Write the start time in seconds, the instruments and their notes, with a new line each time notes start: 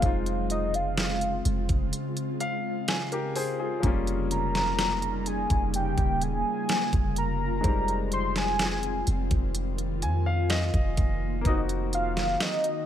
Already playing: ambient pad G#3 C4, soft synth lead F5
0.00 808-style bass F1, ambient pad C#3 F4, grand piano G#3 C4 D#4, kick, closed hi-hat
0.06 grand piano F4
0.26 closed hi-hat
0.50 soft synth lead D#5, closed hi-hat
0.74 soft synth lead F5, closed hi-hat
0.98 snare, closed hi-hat
1.21 closed hi-hat
1.45 808-style bass F1, closed hi-hat
1.69 808-style bass F1, kick, closed hi-hat
1.93 closed hi-hat
2.17 closed hi-hat
2.40 grand piano F5, closed hi-hat
2.88 grand piano G#5, snare, closed hi-hat
3.12 grand piano G4 A#4, closed hi-hat
3.36 grand piano G#4 C5, open hi-hat
3.60 grand piano F4 G#4
3.80 808-style bass F1, grand piano F3 A#3, ambient pad G3 A#3 D#4, kick, closed hi-hat
3.85 grand piano G3 C#4 F4
4.07 closed hi-hat
4.31 soft synth lead A#5, closed hi-hat
4.55 snare, closed hi-hat
4.79 snare, closed hi-hat
5.02 closed hi-hat
5.26 soft synth lead G#5, closed hi-hat
5.50 808-style bass F1, kick, closed hi-hat
5.74 ambient pad F4, soft synth lead G5, closed hi-hat
5.98 808-style bass D#1, kick, closed hi-hat
6.21 soft synth lead G#5, closed hi-hat
6.69 snare, closed hi-hat
6.93 808-style bass F1, kick, closed hi-hat
7.16 soft synth lead A#5, closed hi-hat
7.61 808-style bass F1, ambient pad D#3 C4, grand piano G#3 C4, kick, closed hi-hat
7.66 grand piano G3 D#4
7.88 closed hi-hat
8.12 soft synth lead C6, closed hi-hat
8.36 soft synth lead G#5, snare, closed hi-hat
8.59 snare, closed hi-hat
8.83 closed hi-hat
9.07 808-style bass F1, closed hi-hat
9.31 808-style bass F1, kick, closed hi-hat
9.55 ambient pad A#3, closed hi-hat
9.78 closed hi-hat
10.02 808-style bass F2, grand piano G#5, closed hi-hat
10.26 grand piano F5
10.50 grand piano D#5, snare, closed hi-hat
10.74 808-style bass F1, kick, closed hi-hat
10.97 808-style bass F1, kick, closed hi-hat
11.41 grand piano A#3 B3, kick, closed hi-hat
11.45 808-style bass F1, ambient pad C4 F#4, grand piano D#4 F#4, soft synth lead D#5
11.50 grand piano C4
11.69 closed hi-hat
11.93 soft synth lead F5, closed hi-hat
12.17 snare, closed hi-hat
12.40 soft synth lead D#5, snare, closed hi-hat
12.64 closed hi-hat